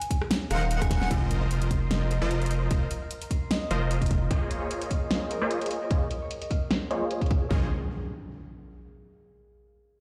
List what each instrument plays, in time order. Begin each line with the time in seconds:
0.02 closed hi-hat
0.11 kick, closed hi-hat
0.22 cross-stick
0.31 snare, closed hi-hat
0.50 sub bass D#1, supersaw synth D#3 D#4 A#4 C5 F#5, vibraphone F5, digital synth lead F#5, cross-stick, closed hi-hat
0.71 closed hi-hat
0.81 vibraphone G#5, kick, cross-stick, closed hi-hat
0.91 vibraphone G#5, kick, snare, closed hi-hat
1.02 snare
1.11 sub bass F1, supersaw synth F3 F4 A#4 C5 D#5, kick, closed hi-hat, impact
1.22 harp A#4
1.31 closed hi-hat
1.42 harp F5
1.51 closed hi-hat
1.62 harp A#5, closed hi-hat
1.71 harp C6, kick, closed hi-hat
1.91 harp D#5, snare, closed hi-hat
2.11 harp C5, closed hi-hat
2.21 sub bass F1, supersaw synth F3 F4 A#4 C5 D#5
2.31 harp A#5, closed hi-hat
2.42 harp C5, closed hi-hat
2.46 closed hi-hat
2.51 closed hi-hat
2.62 harp C5
2.71 sub bass F1, supersaw synth F3 F4 A#4 C5 D#5, kick, closed hi-hat
2.82 harp A#4
2.91 closed hi-hat
3.02 harp F5
3.11 closed hi-hat
3.22 harp A#5, closed hi-hat
3.31 harp C6, kick, closed hi-hat
3.51 harp D#5, snare, closed hi-hat
3.71 sub bass F1, supersaw synth F3 F4 A#4 C5 D#5, harp C5, closed hi-hat
3.91 harp A#5, closed hi-hat
4.02 harp C5, kick, closed hi-hat
4.06 closed hi-hat
4.11 kick, closed hi-hat
4.22 harp C5
4.31 supersaw synth A#3 F4 G#4 C5 C#5 D#5, kick, closed hi-hat
4.42 harp G#4
4.51 closed hi-hat
4.62 harp C#5
4.71 closed hi-hat
4.82 harp D#5, closed hi-hat
4.91 harp F5, kick, closed hi-hat
5.11 harp C5, snare, closed hi-hat
5.31 harp A#4, closed hi-hat
5.42 supersaw synth A#3 F4 G#4 C5 C#5 D#5
5.51 harp D#5, closed hi-hat
5.62 harp A#4, closed hi-hat
5.66 closed hi-hat
5.71 closed hi-hat
5.82 harp A#4
5.91 supersaw synth A#3 F4 G#4 C5 C#5 D#5, kick, closed hi-hat
6.02 harp G#4
6.11 closed hi-hat
6.22 harp C#5
6.31 closed hi-hat
6.42 harp D#5, closed hi-hat
6.51 harp F5, kick, closed hi-hat
6.71 harp C5, snare, closed hi-hat
6.91 supersaw synth A#3 F4 G#4 C5 C#5 D#5, harp C#5, closed hi-hat
7.11 harp G#4, closed hi-hat
7.21 harp F5, kick, closed hi-hat
7.26 closed hi-hat
7.31 kick, closed hi-hat
7.42 harp G#4
7.51 sub bass A#1, supersaw synth A#3 F4 G#4 C5 C#5 D#5, harp G#4, kick, impact